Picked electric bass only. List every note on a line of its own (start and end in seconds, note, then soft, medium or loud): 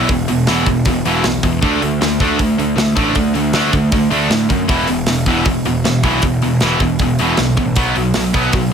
0.09 0.25 E1 medium
0.31 0.45 E1 medium
0.48 0.64 E1 medium
0.66 0.82 E1 loud
0.86 1.01 E1 medium
1.05 1.21 E1 medium
1.26 1.41 B1 medium
1.43 1.59 E2 medium
1.62 1.78 D2 medium
1.83 1.98 D2 medium
2.02 2.17 D2 loud
2.21 2.36 D2 medium
2.39 2.55 D2 medium
2.59 2.74 D2 medium
2.77 2.93 D2 medium
2.97 3.12 A1 medium
3.16 3.31 D2 loud
3.35 3.51 D2 medium
3.53 3.69 D2 medium
3.73 3.89 D2 medium
3.92 4.08 D2 medium
4.11 4.27 D2 medium
4.30 4.46 A2 medium
4.50 4.66 F#2 medium
4.69 4.85 E1 loud
4.88 5.04 E1 medium
5.08 5.23 E1 loud
5.27 5.42 E1 medium
5.45 5.61 E1 loud
5.67 5.82 E1 medium
5.85 6.00 E1 medium
6.04 6.19 B1 medium
6.23 6.39 E1 loud
6.44 6.59 E1 medium
6.62 6.77 E1 medium
6.80 6.96 E1 medium
7.00 7.15 E1 medium
7.20 7.35 E1 medium
7.38 7.54 B1 medium
7.57 7.73 A1 medium
7.77 7.92 B1 medium
7.96 8.12 B1 medium
8.16 8.31 B1 medium
8.34 8.50 B1 medium
8.53 8.69 B1 medium